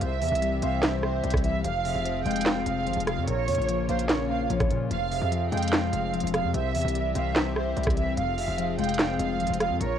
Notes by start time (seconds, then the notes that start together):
Already playing: C4
0.01 C2 C3 G4 C5 E5, closed hi-hat
0.21 E2 E3 E5, closed hi-hat, open hi-hat
0.28 C2, closed hi-hat
0.35 closed hi-hat
0.42 G3, closed hi-hat
0.62 C2 C4 E5 F5, closed hi-hat
0.82 C5, snare, clap, closed hi-hat
1.03 C4 C5 E5, cross-stick
1.24 C2 G3, closed hi-hat
1.30 kick, cross-stick, closed hi-hat
1.37 closed hi-hat
1.44 E3 E5, closed hi-hat
1.64 F1 F2 F3 C4 F4 G#4 F5, closed hi-hat
1.85 C3 E5, open hi-hat
1.95 F1
2.05 F3, closed hi-hat
2.25 F1 G#3 F5 G5, closed hi-hat
2.31 closed hi-hat
2.36 closed hi-hat
2.41 closed hi-hat
2.46 C4, snare, clap
2.66 F1 G#3 F5, closed hi-hat
2.87 G#1 F3, closed hi-hat
2.94 F1, closed hi-hat
3.00 closed hi-hat
3.07 C3 F5, cross-stick, closed hi-hat
3.17 F2
3.27 A#1 A#2 A#3 A#4 C#5, closed hi-hat
3.48 F2 C#3 C#5, closed hi-hat, open hi-hat
3.55 A#1, closed hi-hat
3.62 closed hi-hat
3.69 F3, closed hi-hat
3.89 A#1 A#3 C5 F5, closed hi-hat
3.99 closed hi-hat
4.09 C#4 C#5, snare, clap, closed hi-hat
4.30 A#3 F5
4.50 A#1 F3 C#5, closed hi-hat
4.60 kick, cross-stick, closed hi-hat
4.70 A#2 C#3, closed hi-hat
4.91 F1 F2 F3 C4 G#4 F5, closed hi-hat
5.11 C3 E5, open hi-hat
5.22 F2
5.31 F3, closed hi-hat
5.52 F2 G#3 F5 G5, closed hi-hat
5.57 closed hi-hat
5.62 closed hi-hat
5.67 closed hi-hat
5.72 C4, snare, clap, closed hi-hat
5.93 F1 G#3 F5, closed hi-hat
6.13 F3, closed hi-hat
6.20 E1, closed hi-hat
6.27 closed hi-hat
6.34 C3 F5, cross-stick, closed hi-hat
6.44 F2
6.54 C2 C3 C4 G4 C5 E5, closed hi-hat
6.75 E2 E3 E5, closed hi-hat, open hi-hat
6.82 C2, closed hi-hat
6.88 closed hi-hat
6.95 G3, closed hi-hat
7.15 C2 C4 E5 F5, closed hi-hat
7.36 C5, snare, clap, closed hi-hat
7.56 C4 C5 E5, cross-stick
7.76 C2 G3, closed hi-hat
7.83 kick, cross-stick, closed hi-hat
7.90 closed hi-hat
7.97 E3 E5, closed hi-hat
8.17 F1 F2 F3 F4 G#4 F5, closed hi-hat
8.37 C3 E5, open hi-hat
8.48 F1
8.58 F3, closed hi-hat
8.79 F1 G#3 F5 G5, closed hi-hat
8.84 closed hi-hat
8.89 closed hi-hat
8.94 closed hi-hat
8.99 C4, snare, clap, closed hi-hat
9.19 F1 G#3 F5, closed hi-hat
9.40 G#1 F3, closed hi-hat
9.47 F1, closed hi-hat
9.54 closed hi-hat
9.60 C3 F5, cross-stick, closed hi-hat
9.70 F2
9.81 A#1 A#2 A#3 A#4 C#5, closed hi-hat